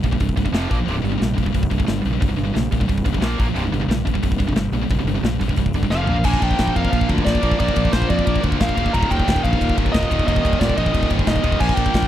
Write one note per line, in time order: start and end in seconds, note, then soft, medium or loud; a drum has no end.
0.03 0.18 A#1 medium
0.03 0.12 C2 medium
0.03 0.11 G2 medium
0.03 kick medium
0.03 open hi-hat medium
0.12 0.19 C2 medium
0.12 0.19 G2 medium
0.12 kick medium
0.20 0.35 C1 medium
0.20 0.35 C2 medium
0.20 0.35 G2 medium
0.20 kick medium
0.20 open hi-hat medium
0.29 kick medium
0.36 0.51 C1 medium
0.36 0.44 C2 medium
0.36 0.43 G2 medium
0.36 kick medium
0.36 open hi-hat soft
0.45 0.52 C2 medium
0.45 0.53 G2 medium
0.45 kick medium
0.52 0.67 F1 medium
0.52 0.69 F2 medium
0.52 0.70 C3 medium
0.52 0.70 F3 medium
0.52 snare loud
0.52 open hi-hat medium
0.70 0.85 A#1 medium
0.70 0.78 A#2 medium
0.70 0.78 F3 medium
0.70 0.78 A#3 medium
0.70 kick medium
0.70 open hi-hat soft
0.80 0.88 A#2 medium
0.80 0.88 F3 medium
0.87 1.02 C1 loud
0.87 0.95 C2 medium
0.87 0.94 G2 medium
0.87 0.96 C3 medium
0.87 open hi-hat medium
0.95 1.03 C2 medium
0.95 1.03 G2 medium
1.04 1.19 G1 medium
1.04 1.10 C2 medium
1.04 1.10 G2 medium
1.04 open hi-hat medium
1.11 1.19 C2 medium
1.11 1.19 G2 medium
1.20 1.36 A#1 medium
1.20 1.36 C2 medium
1.20 1.35 G2 medium
1.20 snare loud
1.20 open hi-hat medium
1.37 1.53 A#1 medium
1.37 1.45 C2 medium
1.37 1.45 G2 medium
1.37 kick medium
1.37 open hi-hat soft
1.46 1.53 C2 medium
1.46 1.53 G2 medium
1.46 kick medium
1.54 1.69 C1 medium
1.54 1.70 C2 medium
1.54 1.70 G2 medium
1.54 kick medium
1.54 open hi-hat medium
1.63 kick medium
1.71 1.86 C1 medium
1.71 1.77 C2 medium
1.71 1.77 G2 medium
1.71 kick medium
1.71 open hi-hat medium
1.78 1.85 C2 medium
1.78 1.85 G2 medium
1.78 kick medium
1.86 2.03 G1 medium
1.86 2.01 C2 medium
1.86 2.01 G2 medium
1.86 snare loud
1.86 open hi-hat medium
2.02 2.20 A#1 medium
2.02 2.10 C2 medium
2.02 2.09 G2 medium
2.02 open hi-hat medium
2.07 2.12 C2 medium
2.11 2.19 C2 medium
2.11 2.20 G2 medium
2.20 2.37 C1 medium
2.20 2.27 C2 medium
2.20 2.28 G2 medium
2.20 kick loud
2.20 open hi-hat medium
2.28 2.36 C2 medium
2.28 2.36 G2 medium
2.37 2.52 G1 medium
2.37 2.43 C2 medium
2.37 2.42 G2 medium
2.37 open hi-hat medium
2.44 2.52 C2 medium
2.44 2.53 G2 medium
2.53 2.70 A#1 medium
2.53 2.69 C2 medium
2.53 2.70 G2 medium
2.53 snare loud
2.53 open hi-hat medium
2.71 2.87 A#1 medium
2.71 2.79 C2 medium
2.71 2.79 G2 medium
2.71 kick medium
2.71 open hi-hat medium
2.80 2.87 C2 medium
2.80 2.88 G2 medium
2.80 kick medium
2.88 3.04 C1 medium
2.88 3.03 C2 medium
2.88 3.04 G2 medium
2.88 kick medium
2.88 open hi-hat medium
2.98 kick medium
3.05 3.20 C1 medium
3.05 3.13 C2 medium
3.05 3.13 G2 medium
3.05 kick medium
3.05 open hi-hat medium
3.14 3.21 C2 medium
3.14 3.22 G2 medium
3.14 kick medium
3.21 3.37 A#1 medium
3.21 3.37 A#2 medium
3.21 3.38 F3 medium
3.21 3.39 A#3 medium
3.21 snare loud
3.21 open hi-hat medium
3.38 3.54 A#1 medium
3.38 3.46 A#2 medium
3.38 3.46 F3 medium
3.38 3.47 A#3 loud
3.38 kick medium
3.38 open hi-hat medium
3.47 3.54 A#2 medium
3.47 3.55 F3 medium
3.54 3.70 C1 medium
3.54 3.62 C2 medium
3.54 3.63 G2 medium
3.54 3.63 C3 medium
3.54 open hi-hat medium
3.64 3.72 C2 medium
3.64 3.71 G2 medium
3.72 3.87 G1 medium
3.72 3.81 C2 medium
3.72 3.80 G2 medium
3.72 open hi-hat medium
3.82 3.88 C2 medium
3.82 3.89 G2 medium
3.88 4.03 A#1 medium
3.88 4.05 C2 medium
3.88 4.04 G2 medium
3.88 snare loud
3.88 open hi-hat medium
4.05 4.21 A#1 medium
4.05 4.14 C2 medium
4.05 4.13 G2 medium
4.05 kick medium
4.05 open hi-hat soft
4.14 4.21 C2 medium
4.14 4.22 G2 medium
4.14 kick medium
4.23 4.38 C1 medium
4.23 4.38 C2 medium
4.23 4.37 G2 medium
4.23 kick medium
4.23 open hi-hat medium
4.32 kick medium
4.38 4.55 C1 medium
4.38 4.46 C2 medium
4.38 4.46 G2 medium
4.38 kick medium
4.38 open hi-hat medium
4.47 4.55 C2 medium
4.47 4.55 G2 medium
4.47 kick medium
4.56 4.71 G1 medium
4.56 4.71 C2 medium
4.56 4.71 G2 medium
4.56 snare loud
4.56 open hi-hat medium
4.72 4.87 A#1 medium
4.72 4.81 C2 medium
4.72 4.81 G2 medium
4.72 open hi-hat medium
4.82 4.90 C2 medium
4.82 4.90 G2 medium
4.89 5.04 C1 medium
4.89 4.98 C2 medium
4.89 4.97 G2 medium
4.89 kick loud
4.89 open hi-hat medium
4.99 5.07 C2 medium
4.99 5.06 G2 medium
5.05 5.21 G1 medium
5.05 5.14 C2 medium
5.05 5.13 G2 medium
5.05 open hi-hat medium
5.14 5.22 C2 medium
5.14 5.23 G2 medium
5.23 5.38 A#1 medium
5.23 5.39 C2 medium
5.23 5.38 G2 medium
5.23 snare loud
5.23 open hi-hat medium
5.40 5.56 A#1 medium
5.40 5.47 C2 medium
5.40 5.47 G2 medium
5.40 kick medium
5.40 open hi-hat medium
5.48 5.56 C2 medium
5.48 5.56 G2 medium
5.48 kick medium
5.56 5.72 C1 medium
5.56 5.72 C2 medium
5.56 5.73 G2 medium
5.56 kick medium
5.56 open hi-hat medium
5.66 kick medium
5.73 5.89 G1 medium
5.73 5.82 C2 medium
5.73 5.82 G2 medium
5.73 kick medium
5.73 open hi-hat medium
5.83 5.91 C2 medium
5.83 5.91 G2 medium
5.83 kick medium
5.90 6.07 F1 medium
5.90 6.07 F2 medium
5.90 6.07 C3 medium
5.90 6.07 F3 medium
5.90 6.22 F5 medium
5.90 snare medium
6.07 6.22 A#1 medium
6.07 6.15 A#2 medium
6.07 6.14 F3 medium
6.07 6.16 A#3 medium
6.07 floor tom medium
6.16 6.22 A#2 medium
6.16 6.24 F3 medium
6.24 6.36 A#1 loud
6.24 7.40 A#2 medium
6.24 6.42 A#2 medium
6.24 6.41 F3 medium
6.24 7.41 F3 medium
6.24 6.41 A#3 loud
6.24 7.42 A#3 loud
6.24 6.40 G#5 loud
6.24 kick medium
6.24 crash loud
6.34 kick medium
6.41 6.53 A#1 medium
6.41 6.58 A#2 medium
6.41 6.58 F3 medium
6.41 6.59 A#3 loud
6.41 6.74 G5 medium
6.41 kick medium
6.41 ride medium
6.51 kick medium
6.58 6.70 A#1 medium
6.58 6.76 A#2 medium
6.58 6.75 F3 medium
6.58 6.75 A#3 loud
6.58 kick medium
6.58 snare loud
6.58 ride medium
6.67 kick medium
6.75 6.87 F2 medium
6.75 6.90 A#2 medium
6.75 6.91 F3 medium
6.75 6.92 A#3 medium
6.75 7.07 F5 loud
6.75 kick medium
6.75 ride medium
6.85 kick medium
6.91 7.04 A#1 medium
6.91 7.08 A#2 loud
6.91 7.08 F3 medium
6.91 7.08 A#3 loud
6.91 kick medium
6.91 ride loud
7.01 kick medium
7.08 7.20 D2 medium
7.08 7.23 A#2 medium
7.08 7.24 F3 medium
7.08 7.25 A#3 loud
7.08 kick medium
7.08 ride medium
7.18 kick medium
7.24 7.37 A#1 medium
7.24 7.41 A#2 loud
7.24 7.41 F3 loud
7.24 7.40 A#3 medium
7.24 7.58 D5 medium
7.24 kick medium
7.24 snare loud
7.24 ride loud
7.35 kick medium
7.41 7.54 A#1 medium
7.41 7.57 A#2 medium
7.41 7.58 F3 medium
7.41 7.59 F3 medium
7.41 7.59 A#3 medium
7.41 7.61 A#3 medium
7.41 kick medium
7.41 ride medium
7.46 7.56 A#2 medium
7.52 kick medium
7.57 7.71 A#1 loud
7.57 8.74 A#2 medium
7.57 7.75 A#2 medium
7.57 7.74 F3 loud
7.57 8.75 F3 loud
7.57 7.74 A#3 medium
7.57 7.90 D5 loud
7.57 kick medium
7.57 ride loud
7.62 8.74 A#3 loud
7.68 kick medium
7.74 7.87 A#1 medium
7.74 7.92 A#2 medium
7.74 7.91 F3 medium
7.74 7.93 A#3 loud
7.74 kick medium
7.74 ride medium
7.85 kick medium
7.93 8.04 A#1 medium
7.93 8.09 A#2 medium
7.93 8.08 F3 medium
7.93 8.09 A#3 loud
7.93 8.08 C5 medium
7.93 kick medium
7.93 snare loud
7.93 ride loud
8.02 kick medium
8.09 8.21 F2 loud
8.09 8.24 A#2 medium
8.09 8.23 F3 medium
8.09 8.25 A#3 medium
8.09 8.40 D5 loud
8.09 kick medium
8.09 ride medium
8.19 kick medium
8.25 8.38 A#1 medium
8.25 8.41 A#2 medium
8.25 8.41 F3 loud
8.25 8.40 A#3 medium
8.25 kick medium
8.25 ride loud
8.36 kick medium
8.41 8.54 D2 medium
8.41 8.58 A#2 medium
8.41 8.59 F3 medium
8.41 8.60 A#3 loud
8.41 kick medium
8.41 ride medium
8.52 kick medium
8.59 8.71 A#1 medium
8.59 8.76 A#2 medium
8.59 8.75 F3 loud
8.59 8.76 A#3 loud
8.59 8.94 F5 loud
8.59 kick medium
8.59 snare loud
8.59 ride loud
8.69 kick medium
8.75 8.88 D1 loud
8.75 8.92 A#2 medium
8.75 8.92 F3 medium
8.75 8.96 A#3 medium
8.75 8.93 A#3 loud
8.75 kick medium
8.75 ride medium
8.86 kick medium
8.92 9.05 D#1 loud
8.92 10.08 D#2 medium
8.92 9.09 D#2 medium
8.92 9.08 A#2 loud
8.92 10.09 A#2 medium
8.92 9.09 D#3 loud
8.92 9.10 A#5 loud
8.92 kick medium
8.92 ride loud
8.96 10.07 D#3 loud
9.03 kick loud
9.09 9.21 D#1 medium
9.09 9.25 D#2 medium
9.09 9.25 A#2 medium
9.09 9.27 D#3 loud
9.09 9.43 G5 loud
9.09 kick medium
9.09 ride medium
9.20 kick medium
9.26 9.39 D#1 medium
9.26 9.44 D#2 medium
9.26 9.42 A#2 loud
9.26 9.43 D#3 loud
9.26 kick medium
9.26 snare loud
9.26 ride loud
9.36 kick medium
9.43 9.55 A#1 loud
9.43 9.57 D#2 medium
9.43 9.58 A#2 medium
9.43 9.58 D#3 loud
9.43 9.74 F5 loud
9.43 kick medium
9.43 ride medium
9.53 kick medium
9.59 9.71 D#1 loud
9.59 9.76 D#2 medium
9.59 9.75 A#2 loud
9.59 9.76 D#3 loud
9.59 kick medium
9.59 ride medium
9.69 kick medium
9.77 9.88 G1 medium
9.77 9.93 D#2 medium
9.77 9.93 A#2 loud
9.77 9.93 D#3 loud
9.77 kick medium
9.77 ride medium
9.86 kick medium
9.92 10.05 D#1 loud
9.92 10.09 D#2 medium
9.92 10.09 A#2 loud
9.92 10.09 D#3 loud
9.92 10.26 D#5 loud
9.92 kick medium
9.92 snare loud
9.92 ride loud
10.03 kick medium
10.09 10.22 D#1 loud
10.09 10.25 D#2 medium
10.09 10.26 A#2 medium
10.09 10.25 D#3 medium
10.09 10.26 D#3 medium
10.09 kick medium
10.09 ride medium
10.13 10.24 D#2 medium
10.19 kick medium
10.25 10.38 D#1 loud
10.25 11.42 D#2 loud
10.25 10.43 D#2 medium
10.25 10.42 A#2 loud
10.25 11.43 A#2 loud
10.25 10.41 D#3 loud
10.25 11.42 D#3 loud
10.25 10.58 D#5 loud
10.25 kick loud
10.25 ride loud
10.36 kick medium
10.42 10.56 D#1 medium
10.42 10.58 D#2 medium
10.42 10.59 A#2 medium
10.42 10.59 D#3 medium
10.42 kick medium
10.42 ride medium
10.53 kick medium
10.60 10.72 D#1 medium
10.60 10.77 D#2 loud
10.60 10.77 A#2 loud
10.60 10.76 D#3 loud
10.60 10.75 D5 medium
10.60 kick medium
10.60 snare loud
10.60 ride loud
10.69 kick medium
10.77 10.89 A#1 loud
10.77 10.92 D#2 medium
10.77 10.93 A#2 medium
10.77 10.93 D#3 medium
10.77 11.08 D#5 loud
10.77 kick medium
10.77 ride medium
10.86 kick medium
10.94 11.05 D#1 loud
10.94 11.11 D#2 loud
10.94 11.10 A#2 loud
10.94 11.10 D#3 loud
10.94 kick medium
10.94 ride loud
11.03 kick medium
11.10 11.22 G1 medium
11.10 11.26 D#2 medium
11.10 11.26 A#2 medium
11.10 11.27 D#3 medium
11.10 kick medium
11.10 ride medium
11.19 kick medium
11.27 11.38 D#1 medium
11.27 11.43 D#2 loud
11.27 11.43 A#2 loud
11.27 11.42 D#3 loud
11.27 11.61 D#5 medium
11.27 kick medium
11.27 snare loud
11.27 ride loud
11.36 kick medium
11.43 11.55 D#1 medium
11.43 11.59 D#2 medium
11.43 11.57 D#2 medium
11.43 11.59 A#2 medium
11.43 11.57 A#2 medium
11.43 11.59 D#3 medium
11.43 kick medium
11.43 ride medium
11.52 kick medium
11.58 11.72 A#1 loud
11.58 12.08 A#2 medium
11.58 11.77 A#2 medium
11.58 11.77 F3 loud
11.58 12.08 F3 medium
11.58 11.76 A#3 loud
11.58 11.74 G#5 loud
11.58 kick medium
11.58 crash loud
11.62 12.08 A#3 loud
11.69 kick medium
11.74 11.88 A#1 medium
11.74 11.92 A#2 medium
11.74 11.93 F3 medium
11.74 11.94 A#3 medium
11.74 12.08 G5 medium
11.74 kick medium
11.74 ride medium
11.86 kick medium
11.93 12.05 A#1 loud
11.93 12.08 A#2 medium
11.93 12.08 F3 loud
11.93 12.08 A#3 loud
11.93 kick medium
11.93 snare loud
11.93 ride loud
12.02 kick medium